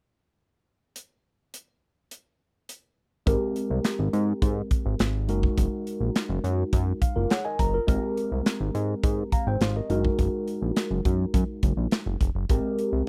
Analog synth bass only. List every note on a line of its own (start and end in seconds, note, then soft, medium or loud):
3.27 3.37 G#1 loud
3.70 3.80 C2 medium
3.99 4.09 G#1 medium
4.13 4.33 G#2 loud
4.42 4.62 G#2 loud
4.86 4.95 G#1 medium
5.00 5.30 G#1 medium
5.29 5.49 F#1 medium
5.58 5.67 F#1 loud
6.01 6.11 A#1 medium
6.29 6.39 F#1 loud
6.44 6.64 F#2 loud
6.73 6.93 F#2 loud
7.16 7.26 F#1 medium
7.59 7.79 F#1 medium
7.88 7.98 G#1 loud
8.32 8.42 C2 medium
8.61 8.70 G#1 medium
8.75 8.95 G#2 loud
9.04 9.24 G#2 loud
9.47 9.57 G#1 medium
9.61 9.81 G#1 medium
9.90 10.10 F#1 loud
10.19 10.29 F#1 loud
10.62 10.72 A#1 medium
10.91 11.01 F#1 medium
11.05 11.25 F#2 medium
11.34 11.44 F#2 medium
11.63 11.73 F#1 medium
11.77 11.87 A#1 medium
12.06 12.16 F#1 medium
12.21 12.31 F1 medium
12.35 12.45 F#1 medium
12.50 12.60 G#1 loud
12.93 13.03 C2 medium